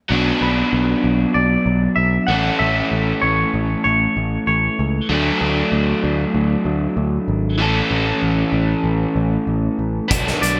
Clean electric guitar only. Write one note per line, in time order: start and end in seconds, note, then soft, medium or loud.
0.42 1.39 B4 medium
1.34 1.94 D5 medium
1.96 2.26 E5 medium
2.27 2.59 F#5 medium
2.59 3.21 E5 medium
3.22 3.83 C#5 medium
3.84 4.46 C#5 medium
4.47 4.91 C#5 medium
10.42 10.60 D5 medium